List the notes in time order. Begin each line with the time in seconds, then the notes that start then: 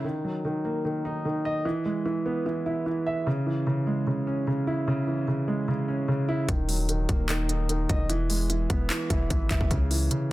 0.04 D#3
0.24 F#3
0.45 D#3
0.65 A#3
0.85 D#3
1.05 D#4
1.25 D#3
1.45 D#5
1.65 E3
1.85 G#3
2.06 E3
2.26 B3
2.46 E3
2.66 E4
2.86 E3
3.06 E5
3.27 C#3
3.47 E3
3.67 C#3
3.87 G#3
4.07 C#3
4.27 C#4
4.47 C#3
4.67 E4
4.88 C#3
5.08 E3
5.28 C#3
5.48 G#3
5.68 C#3
5.88 C#4
6.08 C#3
6.29 E4
6.49 D#1 D#3, kick, closed hi-hat
6.69 F#3, open hi-hat
6.89 D#3, closed hi-hat
7.09 D#1 A#3, kick, closed hi-hat
7.29 D#3, clap, closed hi-hat
7.49 D#4, closed hi-hat
7.69 D#3, closed hi-hat
7.89 E1 D#5, kick, closed hi-hat
8.10 E3, closed hi-hat
8.30 G#3, open hi-hat
8.50 E3, closed hi-hat
8.70 E1 B3, kick, closed hi-hat
8.90 E3, clap, closed hi-hat
9.10 E1 E4, kick, closed hi-hat
9.30 G#1 E3, kick, closed hi-hat
9.51 E1 E5, kick, clap, closed hi-hat
9.61 E1, kick
9.71 C#2 C#3, kick, closed hi-hat
9.91 E3, open hi-hat
10.11 C#3, closed hi-hat